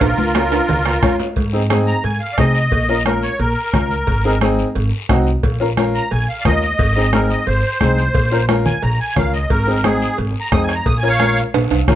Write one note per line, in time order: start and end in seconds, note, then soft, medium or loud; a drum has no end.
0.01 0.15 A#1 loud
0.01 1.16 F4 medium
0.01 1.16 A#4 loud
0.01 bombo low medium
0.01 cowbell loud
0.01 high timbale medium
0.01 long guiro medium
0.18 0.59 C#2 medium
0.18 high conga medium
0.18 high timbale medium
0.35 0.59 C#4 medium
0.35 0.59 F4 medium
0.35 0.59 A#4 medium
0.35 bombo rim medium
0.35 high conga medium
0.35 low timbale loud
0.35 short guiro medium
0.52 high timbale loud
0.52 short guiro medium
0.68 0.96 C#2 loud
0.68 cowbell medium
0.68 high conga soft
0.68 low conga medium
0.68 low timbale medium
0.68 long guiro medium
0.86 bombo rim medium
0.86 low timbale medium
1.03 1.16 F2 medium
1.03 1.26 C#4 medium
1.03 1.27 F4 medium
1.03 1.27 C#5 medium
1.03 bombo low medium
1.03 bombo rim medium
1.03 high conga medium
1.03 short guiro medium
1.20 low timbale medium
1.20 short guiro medium
1.36 1.91 G#2 medium
1.36 bombo low medium
1.36 cowbell medium
1.36 long guiro medium
1.53 1.59 C4 medium
1.53 1.59 D#4 medium
1.53 1.60 G#4 medium
1.70 1.94 C4 medium
1.70 1.94 D#4 medium
1.70 1.94 G#4 loud
1.70 bombo rim medium
1.70 high conga medium
1.70 short guiro medium
1.87 2.04 A#5 medium
1.87 short guiro medium
2.04 2.18 G#2 medium
2.04 2.20 G#5 medium
2.04 cowbell medium
2.04 high conga soft
2.04 long guiro medium
2.20 2.37 F5 medium
2.33 2.36 D5 medium
2.38 2.65 C3 loud
2.38 2.56 C4 medium
2.38 2.56 D#4 medium
2.38 2.56 G#4 medium
2.38 3.04 D#5 loud
2.38 bombo low medium
2.38 bombo rim medium
2.38 high conga medium
2.38 low timbale medium
2.38 short guiro medium
2.55 short guiro medium
2.72 3.26 A#1 loud
2.72 bombo low medium
2.72 cowbell loud
2.72 high conga soft
2.72 long guiro medium
2.89 2.95 C#4 medium
2.89 2.95 F4 medium
2.89 2.95 A#4 medium
3.05 3.29 C#4 medium
3.05 3.30 F4 medium
3.05 3.22 A#4 medium
3.05 3.30 A#4 medium
3.05 bombo rim medium
3.05 high conga medium
3.05 short guiro medium
3.23 3.39 C#5 medium
3.23 short guiro medium
3.39 3.53 A#1 loud
3.39 4.39 A#4 medium
3.39 cowbell medium
3.39 high conga soft
3.39 long guiro medium
3.73 4.01 C#2 loud
3.73 3.91 C#4 medium
3.73 3.92 F4 medium
3.73 3.92 A#4 medium
3.73 bombo low medium
3.73 bombo rim medium
3.73 high conga medium
3.73 low conga medium
3.73 low timbale medium
3.73 short guiro medium
3.91 short guiro medium
4.07 4.62 G#1 medium
4.07 bombo low medium
4.07 cowbell loud
4.07 long guiro medium
4.25 4.31 C4 medium
4.25 4.31 D#4 medium
4.25 4.31 G#4 medium
4.41 4.65 C4 medium
4.41 4.66 D#4 medium
4.41 4.66 G#4 medium
4.41 bombo rim medium
4.41 high conga medium
4.41 short guiro medium
4.59 short guiro medium
4.75 4.89 G#1 loud
4.75 cowbell medium
4.75 high conga soft
4.75 long guiro medium
5.09 5.37 C2 loud
5.09 5.27 C4 medium
5.09 5.27 D#4 medium
5.09 5.27 F#4 medium
5.09 bombo low medium
5.09 bombo rim medium
5.09 high conga medium
5.09 low timbale medium
5.09 short guiro medium
5.27 short guiro medium
5.43 5.98 A#1 loud
5.43 bombo low medium
5.43 cowbell loud
5.43 high conga soft
5.43 long guiro medium
5.60 5.66 C#4 medium
5.60 5.66 F4 medium
5.60 5.67 A#4 medium
5.77 6.01 C#4 medium
5.77 6.01 F4 medium
5.77 6.01 A#4 medium
5.77 bombo rim medium
5.77 high conga medium
5.77 short guiro medium
5.95 6.11 A#5 medium
5.95 short guiro medium
6.11 6.25 A#1 medium
6.11 6.28 G#5 medium
6.11 cowbell medium
6.11 high conga soft
6.11 long guiro medium
6.29 6.45 F5 medium
6.41 6.43 D5 medium
6.45 6.72 D#2 medium
6.45 6.63 C#4 medium
6.45 6.63 F4 medium
6.45 6.63 A#4 medium
6.45 7.11 D#5 loud
6.45 bombo low medium
6.45 bombo rim medium
6.45 high conga medium
6.45 low conga medium
6.45 short guiro medium
6.62 short guiro medium
6.79 7.33 G#1 loud
6.79 bombo low medium
6.79 cowbell loud
6.79 high conga soft
6.79 long guiro medium
6.96 7.02 C4 medium
6.96 7.02 D#4 medium
6.96 7.02 G#4 medium
7.13 7.37 C4 medium
7.13 7.37 D#4 medium
7.13 7.37 G#4 medium
7.13 7.30 A#4 medium
7.13 bombo rim medium
7.13 high conga medium
7.13 short guiro medium
7.30 7.47 D#5 medium
7.30 short guiro medium
7.47 7.61 G#1 medium
7.47 8.45 C5 medium
7.47 cowbell medium
7.47 high conga soft
7.47 long guiro medium
7.81 8.08 C2 loud
7.81 7.99 C4 medium
7.81 7.99 D#4 medium
7.81 7.99 G#4 medium
7.81 bombo low medium
7.81 bombo rim medium
7.81 high conga medium
7.81 short guiro medium
7.98 short guiro medium
8.15 8.69 A#1 loud
8.15 bombo low medium
8.15 cowbell loud
8.15 high conga soft
8.15 long guiro medium
8.31 8.37 C#4 medium
8.31 8.38 F4 medium
8.31 8.38 A#4 medium
8.49 8.72 C#4 medium
8.49 8.73 F4 medium
8.49 8.73 A#4 medium
8.49 bombo rim medium
8.49 high conga medium
8.49 short guiro medium
8.65 8.82 G#5 medium
8.65 low conga medium
8.65 short guiro medium
8.82 8.96 A#1 loud
8.82 8.99 A#5 medium
8.82 cowbell medium
8.82 high conga soft
8.82 long guiro medium
9.00 9.16 G#5 medium
9.16 9.44 C#2 loud
9.16 9.34 C#4 medium
9.16 9.34 F4 medium
9.16 9.35 A#4 medium
9.16 9.33 F5 medium
9.16 bombo low medium
9.16 bombo rim medium
9.16 high conga medium
9.16 low conga medium
9.16 short guiro medium
9.33 9.50 D#5 medium
9.33 short guiro medium
9.50 10.05 G#1 loud
9.50 9.83 A#4 loud
9.50 bombo low medium
9.50 cowbell loud
9.50 high conga soft
9.50 long guiro medium
9.67 9.73 C4 medium
9.67 9.73 D#4 medium
9.67 9.74 G#4 medium
9.84 10.08 C4 medium
9.84 10.08 D#4 medium
9.84 10.17 G#4 loud
9.84 10.08 G#4 medium
9.84 bombo rim medium
9.84 high conga medium
9.84 short guiro medium
10.02 short guiro medium
10.18 10.32 G#1 loud
10.18 cowbell medium
10.18 high conga soft
10.18 long guiro medium
10.41 10.52 A#5 medium
10.52 10.79 F2 loud
10.52 10.70 C4 medium
10.52 10.70 D#4 medium
10.52 10.70 G#4 medium
10.52 10.63 D#6 medium
10.52 bombo low medium
10.52 bombo rim medium
10.52 high conga medium
10.52 short guiro medium
10.64 10.75 G#5 medium
10.69 bombo rim medium
10.69 short guiro medium
10.75 10.86 A#5 medium
10.86 11.40 A#1 loud
10.86 10.97 D#6 medium
10.86 bombo low medium
10.86 cowbell loud
10.86 high conga soft
10.86 long guiro medium
10.98 11.09 G#5 medium
11.03 11.09 C#4 medium
11.03 11.09 F4 medium
11.03 11.09 A#4 medium
11.08 11.40 C#5 medium
11.08 11.42 F5 loud
11.19 11.43 C#4 medium
11.19 11.44 F4 medium
11.19 11.44 A#4 medium
11.19 bombo rim medium
11.19 high conga medium
11.19 short guiro medium
11.37 short guiro medium
11.54 11.68 A#1 loud
11.54 cowbell medium
11.54 high conga soft
11.54 high timbale medium
11.54 long guiro medium
11.71 11.86 C2 medium
11.71 high timbale medium
11.88 11.95 A#1 medium
11.88 11.95 C#4 medium
11.88 11.95 F4 medium
11.88 11.95 A#4 loud
11.88 bombo low medium
11.88 bombo rim medium
11.88 high conga medium
11.88 low conga medium
11.88 short guiro medium